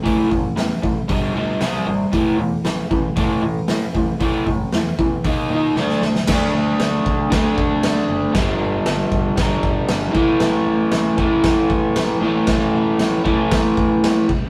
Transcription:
<<
  \new Staff \with { instrumentName = "Overdriven electric guitar" } { \clef bass \time 4/4 \key d \major \tempo 4 = 116 <a, e a>8 <a, e>8 <a, e>8 <a, e>8 <g, d g>8 <g, d g>8 <c g c'>8 <c g>8 | <a, e a>8 <a, e>8 <a, e>8 <a, e>8 <a, e a>8 <a, e>8 <a, e>8 <a, e>8 | <a, e a>8 <a, e>8 <a, e>8 <a, e>8 <dis ais dis'>8 <dis ais dis'>8 <d a d'>8 <d a>8 | <d a d'>2 <d a d'>2 |
<g, d g>2 <g, d g>4. <a, e a>8~ | <a, e a>4. <a, e a>2 <a, e a>8~ | <a, e a>4. <a, e a>2 r8 | }
  \new Staff \with { instrumentName = "Picked electric bass" } { \clef bass \time 4/4 \key d \major a,,8 g,,8 e,8 a,,8 g,,8 d,8 c,8 gis,,8 | a,,8 e,8 a,,8 a,,8 g,,8 a,8 a,8 a,,8 | a,,8 g,,8 e,8 e,8 dis,8 ais,8 d,8 b,,8 | d,8 d,8 d,8 d,8 d,8 d,8 d,8 fis,,8 |
g,,8 g,,8 g,,8 g,,8 g,,8 g,,8 g,,8 a,,8 | a,,8 a,,8 a,,8 a,,8 a,,8 a,,8 a,,8 a,,8 | a,,8 a,,8 a,,8 a,,8 a,,8 a,,8 a,,8 cis,8 | }
  \new DrumStaff \with { instrumentName = "Drums" } \drummode { \time 4/4 <hho bd>8 bd8 <hho sn>8 bd8 <hho bd>4 <hho sn>4 | <hho bd>4 <hho sn>8 bd8 <hho bd>4 <hho sn>8 bd8 | <hho bd>8 bd8 <hho sn>8 bd8 <hho bd>4 sn16 sn16 sn16 sn16 | <cymc bd sn>4 <cymc sn>8 bd8 <cymc bd sn>8 bd8 <cymc sn>4 |
<cymc bd sn>4 <cymc sn>8 bd8 <cymc bd sn>8 bd8 <cymc sn>8 bd8 | <cymc sn>4 <cymc sn>8 bd8 <cymc bd sn>8 bd8 <cymc sn>4 | <cymc bd sn>4 <cymc sn>8 bd8 <cymc bd sn>8 bd8 <cymc sn>8 bd8 | }
>>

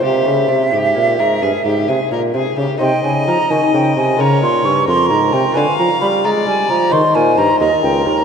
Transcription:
<<
  \new Staff \with { instrumentName = "Flute" } { \time 12/8 \key c \phrygian \tempo 4. = 87 e''1~ e''8 r4. | g''8 aes''8 bes''8 aes''8 g''8 aes''8 bes''8 c'''8 des'''8 c'''8 bes''8 g''8 | aes''8 bes''8 b''8 bes''8 aes''8 bes''8 c'''8 aes''8 bes''8 ees''8 g''8 bes''8 | }
  \new Staff \with { instrumentName = "Violin" } { \time 12/8 \key c \phrygian g'4. g'4 bes'8 aes'8 g'8 aes'8 bes'8 aes'8 g'8 | ees''2. des''4. bes'4. | f''4. d''4. c''4. bes'4. | }
  \new Staff \with { instrumentName = "Lute" } { \time 12/8 \key c \phrygian <c' c''>1. | <ees' c''>2. <f' bes'>2. | <f' b'>2. <ees' des''>2. | }
  \new Staff \with { instrumentName = "Lute" } { \clef bass \time 12/8 \key c \phrygian c8 des8 c8 aes,8 bes,8 aes,8 g,8 aes,8 c8 bes,8 c8 des8 | c8 des8 f8 ees8 des8 c8 des8 bes,8 g,8 f,8 aes,8 c8 | d8 f8 g8 aes8 g8 f8 ees8 bes,8 g,8 ees,8 r8 ees,8 | }
  \new Staff \with { instrumentName = "Bassoon" } { \clef bass \time 12/8 \key c \phrygian c8 des8 c8 aes,8 bes,8 aes,8 g,8 aes,8 c8 bes,8 c8 des8 | c8 des8 f8 ees8 des8 c8 des8 bes,8 g,8 f,8 aes,8 c8 | d8 f8 g8 aes8 g8 f8 ees8 bes,8 g,8 ees,8 des,8 ees,8 | }
>>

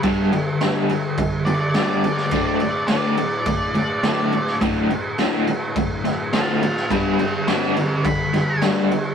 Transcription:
<<
  \new Staff \with { instrumentName = "Lead electric guitar" } { \time 4/4 \key g \major \tempo 4 = 105 r2 r8 d''16 d''16 d''16 d''16 d''16 d''16 | d''16 d''16 d''8 d''2. | r2. <c'' a''>8 <c'' a''>8 | <b' g''>8 <b' g''>8 <a' f''>8 <a' f''>8 b''4 r4 | }
  \new Staff \with { instrumentName = "Overdriven electric guitar" } { \clef bass \time 4/4 \key g \major <g, d g>8 <g, d>8 <g, d g>8 <g, d>8 <g, d>8 <g, d>8 <g, d g>8 <g, d>8 | <d, a, d>8 <d, a,>8 <d, a, d>8 <d, a,>8 <d, a,>8 <d, a,>8 <d, a, d>8 <d, a,>8 | <d, a, d>8 <d, a,>8 <d, a, d>8 <d, a,>8 <d, a,>8 <d, a,>8 <d, a, d>8 <d, a,>8 | <g, d g>8 <g, d>8 <g, d g>8 <g, d>8 <g, d>8 <g, d>8 <g, d g>8 <g, d>8 | }
  \new DrumStaff \with { instrumentName = "Drums" } \drummode { \time 4/4 <cymc bd>8 cymc8 <cymc sn>8 cymc8 <cymc bd>8 cymc8 <cymc sn>8 cymc16 sn16 | <cymc bd>8 cymc8 <cymc sn>8 cymc8 <cymc bd>8 cymc8 <cymc sn>8 cymc16 sn16 | <cymc bd>8 cymc8 <cymc sn>8 cymc8 <cymc bd>8 <cymc sn>8 <cymc sn>8 cymc16 sn16 | <cymc bd>8 cymc8 <cymc sn>8 cymc8 <cymc bd>8 <cymc sn>8 <cymc sn>8 cymc8 | }
>>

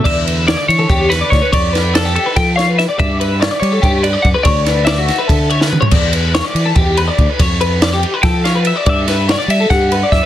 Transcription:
<<
  \new Staff \with { instrumentName = "Clean electric guitar" } { \time 7/8 \key g \lydian \tempo 4 = 143 e''4 d''8 cis''4 b'8 cis''8 | d''4 a'8 a'8 g''8 f''8 e''8 | e''4 d''8 cis''4 d''8 fis''8 | d''4 e''2 r8 |
r2. r8 | r2 g''8 f''8 e''8 | e''4 d''8 e''8 fis''4 e''8 | }
  \new Staff \with { instrumentName = "Clean electric guitar" } { \time 7/8 \key g \lydian d''8 b'8 cis''16 d''8 a'16 g'8 b'16 d''8 b'16 | cis''8 b'8 d''16 g'8 b'16 a'8 cis''16 b'8 d''16 | d''8 b'8 cis''16 d''8 a'16 g'8 b'16 d''8 b'16 | cis''8 b'8 d''16 fis'8 b'16 a'8 cis''16 b'8 cis''16 |
d''8 b'8 cis''16 d''8 a'16 g'8 b'16 d''8 b'16 | cis''8 b'8 d''16 g'8 b'16 a'8 cis''16 b'8 d''16 | d''8 b'8 cis''16 d''8 a'16 g'8 b'16 d''8 r16 | }
  \new Staff \with { instrumentName = "Clean electric guitar" } { \clef bass \time 7/8 \key g \lydian d2.~ d8 | r2. r8 | r2. r8 | r2. r8 |
r2. r8 | r2. r8 | r2. r8 | }
  \new Staff \with { instrumentName = "Fingered electric bass" } { \clef bass \time 7/8 \key g \lydian e,4. e8 e,4 d,16 r16 | f,2 f4. | g,4. g8 g,4 fis,16 r16 | d,2 d4. |
e,4. e8 e,4 d,16 r16 | f,2 f4. | g,4. g8 g,4 fis,16 r16 | }
  \new DrumStaff \with { instrumentName = "Drums" } \drummode { \time 7/8 <cymc bd>8 cymr8 <cymr sn>8 cymr8 <bd cymr>8 <cymr sn>8 <bd cymr sn>8 | <bd cymr>8 <cymr sn>8 <cymr sn>8 cymr8 <bd cymr sn>8 <cymr sn>8 <cymr sn>8 | <bd cymr>8 cymr8 <cymr sn>8 cymr8 <bd cymr>8 cymr8 <bd cymr>8 | <bd cymr>8 <cymr sn>8 <cymr sn>8 <cymr sn>8 <bd cymr>8 cymr16 sn16 toml16 tomfh16 |
<cymc bd cymr>8 cymr8 <cymr sn>8 cymr8 <bd cymr>8 cymr8 <bd cymr>8 | <bd cymr>8 cymr8 <cymr sn>8 cymr8 <bd cymr sn>8 <cymr sn>8 cymr8 | <bd cymr>8 <cymr sn>8 <cymr sn>8 cymr8 <bd cymr sn>8 cymr8 <bd cymr sn>8 | }
>>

